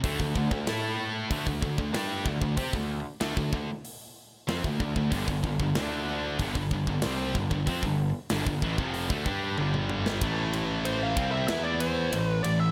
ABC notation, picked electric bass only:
X:1
M:4/4
L:1/16
Q:1/4=94
K:Ddor
V:1 name="Picked electric bass" clef=bass
D,, D,, D,, D,, A,,4 D,, D,, D,, D,, G,,2 D,, D,, | C, D,,2 z D,, D,, D,, z4 z F,, D,, D,, D,, | G,,, G,,, G,,, G,,, D,,4 G,,, G,,, G,,, G,,, C,,2 G,,, G,,, | F,, G,,,2 z G,,, G,,, A,,, F,,,2 D,, G,,2 G,,,4 |
A,,,6 C,,2 E,,4 A,,,2 A,,,2 |]